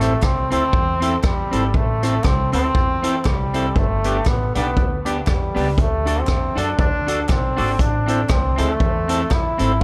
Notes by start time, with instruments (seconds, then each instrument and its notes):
Already playing: upright bass A1, trombone A3
0.00 clean electric guitar C4 E4 A4, tonewheel organ C4 E4 A4 C5, cross-stick, closed hi-hat
0.22 upright bass C2, trombone C4, kick, cross-stick, clap
0.50 upright bass D2, clean electric guitar C4 E4 A4, tonewheel organ C4 E4 A4 C5, trombone C4, closed hi-hat
0.73 upright bass E2, tonewheel organ A4 C5, kick
1.00 clean electric guitar C4 E4 A4, tonewheel organ C4 E4 A4 C5, closed hi-hat
1.22 upright bass E2, trombone G3, tonewheel organ A4 C5, muted clean electric guitar stroke, kick, cross-stick, clap
1.51 upright bass G#1, clean electric guitar C4 E4 A4, tonewheel organ C4 E4 A4 C5, closed hi-hat
1.74 upright bass A1, trombone A3, kick
2.03 tonewheel organ C4 E4 A4 C5, clean electric guitar C4 E4 A4, cross-stick, closed hi-hat
2.24 upright bass C2, trombone C4, kick, cross-stick, clap
2.52 upright bass D2, clean electric guitar C4 E4 A4, tonewheel organ C4 E4 A4 C5, trombone C4, closed hi-hat
2.75 upright bass E2, tonewheel organ A4 C5, muted clean electric guitar stroke, kick
3.02 clean electric guitar C4 E4 A4, tonewheel organ C4 E4 A4 C5, closed hi-hat
3.25 upright bass C2, trombone G3, tonewheel organ A4 C5, muted clean electric guitar stroke, kick, cross-stick, clap
3.54 clean electric guitar C4 E4 A4, tonewheel organ C4 E4 A4 C5, closed hi-hat
3.76 upright bass G1, trombone A3, kick
4.04 clean electric guitar B3 D4 G4, tonewheel organ D4 G4 B4 D5, closed hi-hat
4.25 upright bass A1, trombone B3, kick, cross-stick, clap
4.55 upright bass B1, clean electric guitar B3 D4 G4, trombone B3, tonewheel organ D4 G4 B4 D5, closed hi-hat
4.77 upright bass D2, tonewheel organ B4 D5, kick
5.05 clean electric guitar B3 D4 G4, tonewheel organ D4 G4 B4 D5, closed hi-hat
5.27 upright bass E2, trombone G3, tonewheel organ B4 D5, muted clean electric guitar stroke, kick, cross-stick, clap
5.55 upright bass C#2, clean electric guitar B3 D4 G4, tonewheel organ D4 G4 B4 D5, open hi-hat
5.78 upright bass D2, trombone A3, kick, hi-hat pedal
6.05 clean electric guitar D4 F#4 A4, tonewheel organ D4 F#4 A4 D5, closed hi-hat
6.20 trombone C4
6.27 upright bass E2, kick, cross-stick, clap
6.55 upright bass F#2, clean electric guitar D4 F#4 A4, tonewheel organ D4 F#4 A4 D5, trombone D4, closed hi-hat
6.79 upright bass D2, trombone D4, tonewheel organ A4 D5, kick
7.07 clean electric guitar D4 F#4 A4, tonewheel organ D4 F#4 A4 D5, closed hi-hat
7.28 upright bass B1, trombone C4, tonewheel organ A4 D5, muted clean electric guitar stroke, kick, cross-stick, clap
7.57 upright bass G#1, clean electric guitar D4 F#4 A4, tonewheel organ D4 F#4 A4 D5, open hi-hat
7.79 upright bass A1, trombone D4, kick, hi-hat pedal
8.06 clean electric guitar C4 E4 A4, tonewheel organ C4 E4 A4 C5, closed hi-hat
8.29 upright bass C2, trombone C4, kick, cross-stick, clap
8.56 upright bass D2, clean electric guitar C4 E4 A4, tonewheel organ C4 E4 A4 C5, closed hi-hat
8.60 trombone A3
8.80 upright bass E2, tonewheel organ A4 C5, kick
9.08 clean electric guitar C4 E4 A4, tonewheel organ C4 E4 A4 C5, closed hi-hat
9.30 upright bass E2, trombone E4, tonewheel organ A4 C5, muted clean electric guitar stroke, kick, cross-stick, clap
9.58 upright bass G#1, clean electric guitar C4 E4 A4, tonewheel organ C4 E4 A4 C5, closed hi-hat